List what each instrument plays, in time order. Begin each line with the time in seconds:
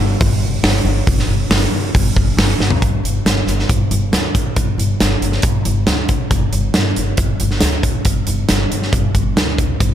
0.00 upright bass G1
0.21 upright bass G1, kick, open hi-hat
0.63 upright bass G1, snare, open hi-hat
0.85 upright bass G1
1.07 upright bass G1, kick, open hi-hat
1.19 snare
1.28 upright bass G1
1.50 upright bass G1, snare, open hi-hat
1.72 upright bass G1
1.95 upright bass G1, kick, open hi-hat
2.16 upright bass G1, kick
2.37 upright bass G1, snare, open hi-hat
2.59 upright bass G1, snare
2.71 floor tom
2.82 upright bass G1, kick, closed hi-hat
3.03 upright bass G1, closed hi-hat
3.25 upright bass G1, snare, closed hi-hat
3.47 upright bass G1, closed hi-hat
3.59 snare
3.69 upright bass G1, kick, closed hi-hat
3.91 upright bass G1, closed hi-hat
4.12 upright bass D2, snare, closed hi-hat
4.35 kick, closed hi-hat
4.56 upright bass G1, kick, closed hi-hat
4.78 upright bass G1, closed hi-hat
5.00 upright bass G1, snare, closed hi-hat
5.21 upright bass G1, closed hi-hat
5.32 snare
5.42 upright bass G1, kick, closed hi-hat
5.65 upright bass G1, closed hi-hat
5.87 upright bass D2, snare, closed hi-hat
6.09 kick, closed hi-hat
6.31 upright bass G1, kick, closed hi-hat
6.53 upright bass G1, closed hi-hat
6.74 upright bass G1, snare, closed hi-hat
6.96 upright bass G1, closed hi-hat
7.17 upright bass G1, kick, closed hi-hat
7.40 upright bass G1, closed hi-hat
7.51 snare
7.61 upright bass D2, snare, closed hi-hat
7.83 kick, closed hi-hat
8.05 upright bass G1, kick, closed hi-hat
8.27 upright bass G1, closed hi-hat
8.49 upright bass G1, snare, closed hi-hat
8.71 upright bass G1, closed hi-hat
8.82 snare
8.93 upright bass G1, kick, closed hi-hat
9.15 upright bass G1, kick, closed hi-hat
9.36 upright bass D2, snare, closed hi-hat
9.58 kick, closed hi-hat
9.80 upright bass G1, kick, closed hi-hat